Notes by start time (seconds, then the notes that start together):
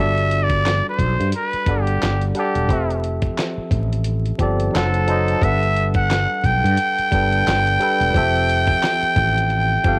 Already playing: G1 G3 D4 F#4
0.00 A4 D5 E5
0.18 closed hi-hat
0.31 closed hi-hat
0.43 D5
0.50 kick, closed hi-hat
0.66 snare, clap, closed hi-hat
0.89 C5
0.99 B1, kick, closed hi-hat
1.20 G2, closed hi-hat
1.32 B4, closed hi-hat
1.53 muted fretless electric bass stroke, closed hi-hat
1.66 G1 G3 D4 A4 F#5, kick, closed hi-hat
1.71 D5
1.81 G4
1.87 closed hi-hat
2.02 G1, snare, clap, closed hi-hat
2.22 closed hi-hat
2.35 G3 D4 G4 A4 F#5, closed hi-hat
2.39 D5
2.55 E1, closed hi-hat
2.69 F1 F3 C4 G4 A4, kick, closed hi-hat
2.73 E5
2.90 closed hi-hat
3.04 closed hi-hat
3.22 kick, closed hi-hat
3.39 snare, clap, closed hi-hat
3.58 muted fretless electric bass stroke
3.71 A1, kick, closed hi-hat
3.93 closed hi-hat
4.05 closed hi-hat
4.26 closed hi-hat
4.39 G1 F3 C4 G4 A4, kick, closed hi-hat
4.43 D5
4.60 closed hi-hat
4.72 F#1 F#3 D#4 A4 C5, clap, closed hi-hat
4.76 F#5, snare
4.94 closed hi-hat
5.07 F#3 D#4 A4 C5, closed hi-hat
5.11 D#5
5.28 closed hi-hat
5.41 G1 G3 D4 A4 B4 E5, kick, closed hi-hat
5.45 F#5
5.63 closed hi-hat
5.76 closed hi-hat
5.94 F#5, kick, closed hi-hat
6.11 snare, clap, closed hi-hat
6.44 B1 G5, kick, closed hi-hat
6.64 G2, closed hi-hat
6.77 closed hi-hat
6.98 muted fretless electric bass stroke, closed hi-hat
7.11 G1 G3 D4 A4 B4, kick, closed hi-hat
7.15 G5
7.32 closed hi-hat
7.47 G1, snare, clap, closed hi-hat
7.67 closed hi-hat
7.80 G3 D4 A4 B4, closed hi-hat
7.84 G5
8.00 E1, closed hi-hat
8.13 F1 F3 C4 G4 A4, kick, closed hi-hat
8.17 E5
8.36 closed hi-hat
8.49 closed hi-hat
8.67 kick, snare, closed hi-hat
8.83 snare, clap, closed hi-hat
9.03 muted fretless electric bass stroke, closed hi-hat
9.16 A1, kick, closed hi-hat
9.38 closed hi-hat
9.50 closed hi-hat
9.83 G1 F3 C4 G4 A4, kick, closed hi-hat
9.88 F5